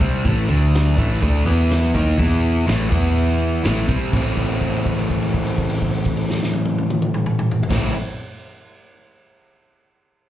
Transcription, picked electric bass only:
0.01 C2
0.26 A1
0.49 D2
0.99 A1
1.23 D2
1.47 E2
1.95 D#2
2.20 E2
2.69 A1
2.92 E2
3.66 A1
3.89 C2
4.13 A1
7.70 A1

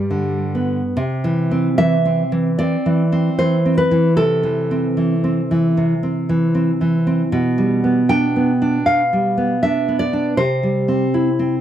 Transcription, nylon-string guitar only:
Already playing: G2 G3
0.11 D3
0.55 B3
0.97 C3
1.24 E3
1.51 C4
1.78 E3 E5
2.05 C4
2.32 E3
2.59 C4 D5
2.86 E3
3.12 C4
3.39 E3 C5
3.65 C4
3.78 B4
3.91 E3
4.17 C3 A4
4.43 E3
4.71 C4
4.97 E3
5.24 C4
5.51 E3
5.77 C3
6.03 C4
6.29 E3
6.55 C4
6.81 E3
7.07 C4
7.32 B2
7.58 G3
7.84 B3
8.09 D4 G5
8.36 B3
8.62 D4
8.86 B2 F5
9.13 G3
9.38 B3
9.63 D4 E5
9.88 B3
9.99 D5
10.13 D4
10.37 C3 C5
10.63 G3
10.88 C4
11.14 E4
11.39 C4

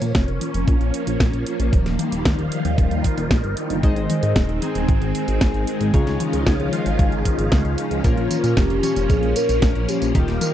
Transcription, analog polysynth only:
3.83 G#3 D#4 G#4 C5 D#5
4.62 G#3 D#4 G#4 C5 G#5
5.94 C#3 D#4 F4 G#4 C#5
6.73 C#3 D#4 F4 G#4 F5
8.04 A#2 A#3 C#4 F4 A#4
8.83 A#2 A#3 C#4 F4 C#5
10.15 D#3 A#3 D#4 F4 G4

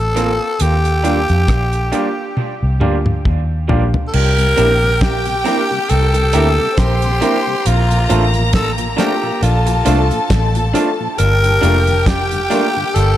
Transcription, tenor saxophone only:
Already playing: A4
0.62 G4
4.08 A4
4.14 A#4
5.02 G4
5.89 A4
6.79 G4
7.67 F4
8.55 A4
8.99 G4
9.43 F4
11.19 A#4
12.07 G4
12.94 A4

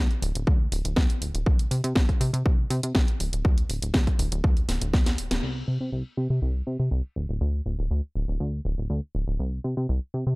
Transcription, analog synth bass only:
0.22 D1
0.35 D1
0.47 D2
0.72 D1
0.85 D1
0.97 D2
1.22 D1
1.34 D1
1.46 C2
1.71 C3
1.84 C3
1.96 C2
2.21 C3
2.33 C3
2.46 C2
2.70 C3
2.83 C3
2.95 C2
3.20 D1
3.33 D1
3.45 D2
3.69 D1
3.82 D1
3.94 D2
4.19 D1
4.32 D1
4.44 D2
4.69 D1
4.81 D1
4.94 D2
5.18 D1
5.31 D1
5.43 C2
5.68 C3
5.81 C3
5.92 C2
6.17 C3
6.30 C3
6.42 C2
6.67 C3
6.80 C3
6.91 C2
7.16 D1
7.29 D1
7.41 D2
7.66 D1
7.79 D1
7.91 D2
8.15 D1
8.28 D1
8.40 D2
8.65 D1
8.78 D1
8.90 D2
9.15 D1
9.28 D1
9.39 C2
9.64 C3
9.77 C3
9.89 C2
10.14 C3
10.27 C3

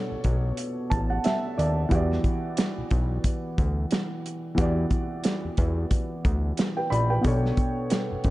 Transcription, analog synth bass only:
0.12 B1
0.25 B1
0.92 A1
1.59 D#2
1.92 E2
2.78 B1
2.92 B1
3.58 D2
4.58 E2
5.45 E2
5.58 E2
6.25 D2
6.92 A#1
7.25 B1
8.12 F#1
8.25 F#1

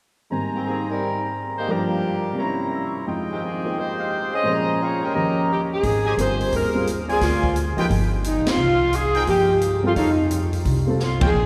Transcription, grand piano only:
0.30 G#2 D#3 G3 A#3 C4
1.68 G2 F3 G3 A#3 F4
2.33 C3 G3
2.38 A#3 C#4
2.44 E4
3.06 F2 F3 G#3 D#4 G5
3.64 A#3 F4 G4 C5
4.43 A#2 F3 G#3 C#4
4.49 C5
5.14 D#2 D#3 F3 C#4 G4
6.18 G3 C4 F4 A#4
6.74 G3 C4 F4 G#4
7.77 F3 A#3 D#4 G4
9.26 F3 A#3 D#4 G4
9.83 G3 C4 F4 A4
10.87 G3 C4 F4 A4
11.20 F3 A#3 D#4 F4

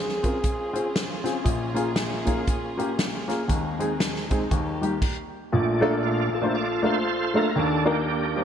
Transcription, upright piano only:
Already playing: C#2 C#3
0.23 C4 C#4 F4 A#4
0.73 C4 C#4 F4 G#4
1.24 C4 C#4 F4 G#4
1.44 A#1 A#2
1.74 A#3 C#4 F4 G#4
2.26 A#3 C#4 F4 G#4
2.77 A#3 C#4 F4 G4
3.28 A#3 C#4 F4 G#4
3.48 D#2 D#3
3.79 G#3 C4 D#4 G#4
4.30 G#3 C4 D#4 G#4
4.51 D#2 D#3
4.81 G3 A#3 D#4 G4
5.52 A#1 A#2
5.81 A3 A#3 D4 F4 A4
6.33 F4 A4
6.42 A3 A#3 D4 F4 C5
6.82 A3 A#3 D4 F4 A4
7.34 A3 A#3 D4 F4 A4
7.55 D#2 D#3
7.85 A#3 D4 D#4 G4 A#4
8.36 G4 C5

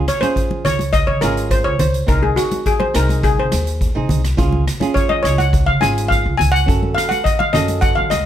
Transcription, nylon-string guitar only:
0.21 C#4 F4 G#4
1.22 C#4 F4 G#4
2.06 C4 D#4 G#4
2.94 C4 D#4 G#4
3.95 C4 D#4 G#4
4.37 C#4 F4 G#4
4.80 C#4 F4 G#4
5.81 C#4 F4 G#4
6.66 C#4 F#4 A4
7.53 C#4 F#4 A4

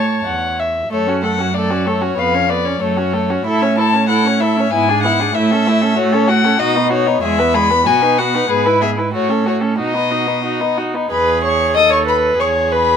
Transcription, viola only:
Already playing: C#5
0.90 A3
1.07 C#4
1.23 A3
1.38 C#4
1.54 A3
1.70 C#4
1.86 A3
2.02 C#4
2.17 B3
2.33 C#4
2.49 B3
2.66 C#4
2.81 A3
2.97 C#4
3.14 A3
3.30 C#4
3.45 E4
3.61 C#4
3.77 E4
3.93 C#4
4.09 E4
4.25 C#4
4.41 E4
4.57 C#4
4.73 B3
4.89 D4
5.04 B3
5.20 D4
5.36 A3
5.51 C#4
5.68 A3
5.83 C#4
5.98 A3
6.14 C#4
6.30 A3
6.45 C#4
6.61 D#4
6.76 B3
6.92 D#4
7.07 B3
7.24 G#3
7.39 B3
7.54 G#3
7.70 B3
7.86 B3
8.02 D#4
8.19 B3
8.35 D#4
8.50 B3
8.66 E4
8.81 B3
8.96 E4
9.13 A3
9.29 C#4
9.46 A3
9.61 C#4
9.78 D#4
9.95 B3
10.11 D#4
10.27 B3
10.44 D#4
10.60 B3
10.77 D#4
10.94 B3
11.10 G#4
11.75 A4
12.39 G#4

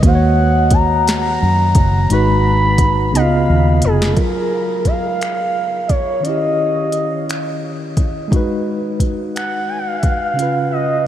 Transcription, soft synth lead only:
0.06 F#5
0.73 A#5
2.11 B5
3.15 F5
3.84 G#4
4.11 A4
4.16 A#4
4.86 F5
5.88 C#5
6.23 D#5
9.35 F#5
9.69 G#5
9.78 F#5
9.87 F5
9.96 E5 F#5
10.03 F5
10.72 D#5

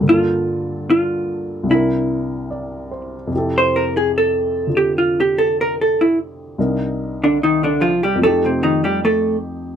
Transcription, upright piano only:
0.01 G2 D3
0.06 A#3 F4
0.11 A4
1.63 C2 C3
1.68 D4 E4
1.74 A#4
2.50 D5
2.91 C5
3.27 F2 C3
3.33 E4 G4
3.38 A4
4.67 D3 F4 A4
6.58 C2 C3 D4 D#4 A#4
8.15 F2 F3
8.21 A3 D#4
8.26 G4

